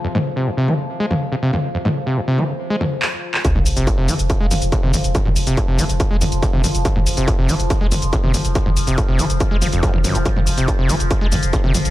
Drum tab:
HH |----------------|----------------|x-oxx-oxx-oxx-ox|x-oxx-oxx-oxx-ox|
SH |----------------|----------------|x-xxx-xxx-xxx-xx|x-xxx-xxx-xxx-xx|
CP |----------------|------------x--x|----------------|----------------|
T2 |-o----o---o---o-|-o----o---o-----|-o----o---o--oo-|-o----o---o--oo-|
BD |----------------|----------------|o---o---o---o---|o---o---o---o---|

HH |x-oxx-oxx-oxx-ox|x-oxx-oxx-oxx-ox|x-oxx-oxx-oxx-ox|
SH |x-xxx-xxx-xxx-xx|x-xxx-xxx-xxx-xx|x-xxx-xxx-xxx-xx|
CP |----------------|----------------|----------------|
T2 |-o----o---o--oo-|-o----o---o--oo-|-o----o---o--oo-|
BD |o---o---o---o---|o---o---o---o---|o---o---o---o---|